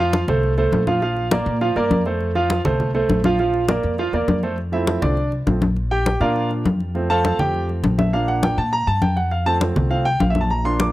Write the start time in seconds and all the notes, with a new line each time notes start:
Already playing: F2
0.00 F3 F4 F5
0.13 high conga
0.28 C2 A3 A4 C5, high conga, low conga
0.43 high conga
0.58 A3 A4 C5, high conga
0.72 A#1, high conga
0.87 F3 F4 F5, high conga
1.02 F3 F4 F5, high conga
1.17 high conga
1.31 A#3 A#4 D5, high conga
1.46 A#2, high conga
1.61 F3 F4 F5, high conga
1.76 G2 A#3 A#4 D5, high conga
1.90 F2, high conga
2.06 A3 A4 C5, high conga
2.21 high conga
2.35 F3 F4 F5, high conga
2.50 high conga
2.65 C2 A3 A4 C5, high conga, low conga
2.80 high conga, low conga
2.95 A3 A4 C5, high conga
3.09 A#1, high conga
3.24 F3 F4 F5, high conga
3.39 F3 F4 F5, high conga
3.54 high conga
3.68 A#3 A#4 D5, high conga
3.83 F2, high conga
3.98 F3 F4 F5, high conga
4.13 E2 A#3 A#4 D5, high conga
4.28 F2, high conga
4.43 A3 A4 C5, high conga
4.58 high conga
4.72 F3 A3 C4 E4 E5, high conga
4.87 high conga
5.02 C2 D4 D5, high conga, low conga
5.17 high conga
5.32 high conga
5.47 A#1 F3 A3 C4, high conga
5.62 high conga
5.76 high conga
5.91 G4 G5, high conga
6.06 high conga
6.20 A#2 F3 A#3 D4 F4 A#4 D5 F5, high conga
6.36 high conga
6.51 high conga
6.65 F2, high conga
6.80 high conga
6.95 F3 A3 C4, high conga
7.10 A4 C5 F5 A5, high conga
7.25 high conga
7.39 F2 G4 G5, high conga, low conga
7.54 high conga
7.69 high conga
7.83 A#1, high conga
7.98 E5, high conga
8.13 F3 A#3 D4 F5, high conga
8.28 F#5, high conga
8.43 G5, high conga
8.58 A#2 A5, high conga
8.73 A#5, high conga
8.87 G2 A5, high conga
9.02 F2 G5, high conga
9.17 F#5, high conga
9.31 F5, high conga
9.46 F3 A3 C4 A5, high conga
9.61 high conga
9.76 C2, high conga, low conga
9.90 F3 A3 C4 F5, high conga
10.05 G5, high conga
10.20 A#1 F5, high conga
10.30 E5
10.35 high conga
10.41 A5
10.50 A#5, high conga
10.65 F3 A#3 D4 C6, high conga
10.80 D6, high conga